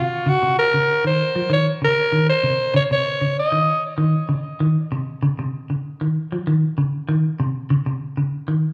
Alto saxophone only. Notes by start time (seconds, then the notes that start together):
Already playing: F4
0.29 F#4
0.59 A#4
1.07 C5
1.53 C#5
1.84 A#4
2.30 C5
2.76 C#5
2.93 C#5
3.40 D#5